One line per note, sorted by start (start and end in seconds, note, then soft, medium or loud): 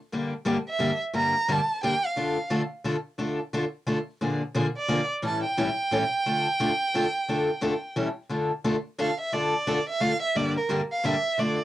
0.12 0.32 G2 medium
0.12 0.32 D3 medium
0.12 0.33 G3 medium
0.12 0.33 A#3 medium
0.12 0.33 D4 medium
0.12 0.33 G4 medium
0.45 0.56 G2 medium
0.45 0.56 D3 medium
0.45 0.56 G3 medium
0.45 0.57 A#3 medium
0.45 0.57 D4 medium
0.45 0.57 G4 medium
0.69 0.99 E5 medium
0.79 0.90 G2 medium
0.79 0.90 D3 medium
0.79 0.90 G3 medium
0.79 0.90 A#3 medium
0.79 0.91 D4 medium
0.79 0.91 G4 medium
1.13 1.34 G2 medium
1.13 1.34 D3 medium
1.13 1.34 G3 medium
1.13 1.34 A#3 medium
1.13 1.34 D4 medium
1.13 1.34 G4 medium
1.13 1.54 A#5 medium
1.48 1.59 G2 medium
1.48 1.59 D3 medium
1.48 1.59 G3 medium
1.48 1.59 A#3 medium
1.48 1.59 D4 medium
1.48 1.60 G4 loud
1.52 1.83 A5 medium
1.83 1.93 G2 medium
1.83 1.93 D3 medium
1.83 1.93 G3 medium
1.83 1.94 A#3 medium
1.83 1.94 D4 medium
1.83 1.94 G4 medium
1.83 2.07 G5 medium
2.06 2.52 F5 medium
2.16 2.36 D3 medium
2.16 2.37 A3 medium
2.16 2.37 D4 medium
2.16 2.37 F4 medium
2.16 2.37 A4 medium
2.50 2.61 D3 medium
2.50 2.61 A3 medium
2.50 2.61 D4 medium
2.50 2.61 F4 medium
2.50 2.61 A4 medium
2.84 2.95 D3 medium
2.84 2.95 A3 medium
2.84 2.95 D4 medium
2.84 2.96 F4 medium
2.84 2.96 A4 medium
3.18 3.38 D3 medium
3.18 3.39 A3 medium
3.18 3.39 D4 medium
3.18 3.39 F4 medium
3.18 3.39 A4 medium
3.53 3.64 D3 medium
3.53 3.64 A3 medium
3.53 3.64 D4 medium
3.53 3.64 F4 medium
3.53 3.64 A4 medium
3.87 3.97 D3 medium
3.87 3.97 A3 medium
3.87 3.98 D4 medium
3.87 3.98 F4 medium
3.87 3.98 A4 medium
4.21 4.41 A#2 medium
4.21 4.41 D3 medium
4.21 4.41 F3 medium
4.21 4.41 A#3 medium
4.21 4.42 D4 medium
4.21 4.42 G#4 medium
4.54 4.65 A#2 medium
4.54 4.66 D3 medium
4.54 4.66 F3 medium
4.54 4.66 A#3 medium
4.54 4.66 D4 medium
4.54 4.66 G#4 medium
4.77 5.08 D5 medium
4.88 4.99 A#2 medium
4.88 4.99 D3 medium
4.88 5.00 F3 medium
4.88 5.00 A#3 medium
4.88 5.00 D4 medium
4.88 5.00 G#4 medium
5.22 5.43 A2 medium
5.22 5.43 E3 medium
5.22 5.43 G3 medium
5.22 5.43 C#4 medium
5.22 5.43 E4 medium
5.22 5.44 A4 medium
5.22 5.44 A5 medium
5.44 7.93 G5 medium
5.57 5.68 A2 medium
5.57 5.68 E3 medium
5.57 5.68 G3 medium
5.57 5.68 C#4 medium
5.57 5.69 E4 medium
5.57 5.69 A4 medium
5.91 6.02 A2 medium
5.91 6.02 E3 medium
5.91 6.03 G3 medium
5.91 6.03 C#4 medium
5.91 6.03 E4 medium
5.91 6.03 A4 medium
6.26 6.46 D3 medium
6.26 6.46 A3 medium
6.26 6.46 D4 medium
6.26 6.46 F4 medium
6.26 6.46 A4 medium
6.60 6.70 D3 medium
6.60 6.71 A3 medium
6.60 6.71 D4 medium
6.60 6.71 F4 medium
6.60 6.71 A4 medium
6.94 7.05 D3 medium
6.94 7.05 A3 medium
6.94 7.05 D4 medium
6.94 7.05 F4 medium
6.94 7.06 A4 medium
7.28 7.48 D3 medium
7.28 7.49 A3 medium
7.28 7.49 D4 medium
7.28 7.49 F4 medium
7.28 7.49 A4 medium
7.61 7.72 D3 medium
7.61 7.73 A3 medium
7.61 7.73 D4 medium
7.61 7.73 F4 medium
7.61 7.73 A4 medium
7.96 8.07 A2 medium
7.96 8.07 E3 medium
7.96 8.07 G3 medium
7.96 8.07 C#4 medium
7.96 8.07 E4 medium
7.96 8.07 A4 medium
8.29 8.50 D3 medium
8.29 8.50 A3 medium
8.29 8.51 D4 medium
8.29 8.51 F4 medium
8.29 8.51 A4 medium
8.64 8.75 D3 medium
8.64 8.75 A3 medium
8.64 8.75 D4 medium
8.64 8.75 F4 medium
8.64 8.75 A4 medium
8.98 9.09 D3 medium
8.98 9.09 A3 medium
8.98 9.10 D4 medium
8.98 9.10 F4 medium
8.98 9.10 A4 medium
8.98 9.18 F5 medium
9.21 9.35 E5 medium
9.32 9.53 D3 medium
9.32 9.53 A3 medium
9.32 9.53 D4 medium
9.32 9.53 F4 medium
9.32 9.54 A4 medium
9.32 9.88 D5 medium
9.67 9.78 D3 medium
9.67 9.78 A3 medium
9.67 9.78 D4 medium
9.67 9.78 F4 medium
9.67 9.78 A4 medium
9.89 10.03 E5 medium
10.00 10.11 D3 medium
10.00 10.12 A3 medium
10.00 10.12 D4 medium
10.00 10.12 F4 medium
10.00 10.12 A4 medium
10.00 10.21 F5 loud
10.22 10.38 E5 medium
10.35 10.55 G2 medium
10.35 10.56 D3 medium
10.35 10.56 G3 medium
10.35 10.56 A#3 medium
10.35 10.56 D4 medium
10.35 10.56 G4 medium
10.35 10.56 D5 medium
10.57 10.65 A#4 medium
10.69 10.80 G2 medium
10.69 10.80 D3 medium
10.69 10.80 G3 medium
10.69 10.80 A#3 medium
10.69 10.81 D4 medium
10.69 10.81 G4 medium
10.92 11.07 F5 medium
11.04 11.14 G2 medium
11.04 11.14 D3 medium
11.04 11.15 G3 medium
11.04 11.15 A#3 medium
11.04 11.15 D4 medium
11.04 11.15 G4 medium
11.04 11.41 E5 medium
11.38 11.58 D3 medium
11.38 11.58 A3 medium
11.38 11.58 D4 medium
11.38 11.59 F4 medium
11.38 11.59 A4 medium
11.38 11.59 D5 medium